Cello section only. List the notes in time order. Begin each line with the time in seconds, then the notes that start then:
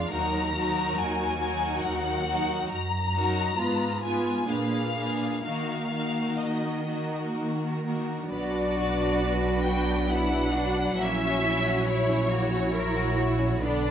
0.11 D#2
0.97 D#2
1.84 D#2
2.70 F#2
3.58 G#2
4.48 A#2
5.45 D#3
6.42 D#3
7.37 D#3
8.31 F#4
10.09 E4
10.54 D4
10.99 C#4
11.87 E4
12.31 F#4
12.74 A#4
13.18 F#4
13.62 D4